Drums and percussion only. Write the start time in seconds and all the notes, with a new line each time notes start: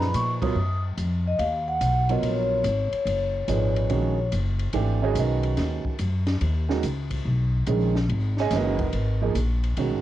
0.00 snare
0.14 hi-hat pedal, ride
0.42 kick, ride
0.97 hi-hat pedal, ride
1.39 ride
1.81 hi-hat pedal, ride
2.09 ride
2.23 ride
2.64 hi-hat pedal, ride
2.93 ride
3.07 ride
3.48 hi-hat pedal, ride
3.76 ride
3.90 ride
4.32 hi-hat pedal, ride
4.59 ride
4.73 ride
5.15 hi-hat pedal, ride
5.43 ride
5.57 snare, ride
5.85 kick
5.99 hi-hat pedal, ride
6.27 snare, ride
6.41 ride
6.70 snare
6.83 hi-hat pedal, ride
7.11 kick, ride
7.67 hi-hat pedal, ride
7.95 snare
8.09 ride
8.37 snare
8.51 snare, hi-hat pedal, ride
8.79 kick, ride
8.93 ride
9.35 hi-hat pedal, ride
9.64 ride
9.77 ride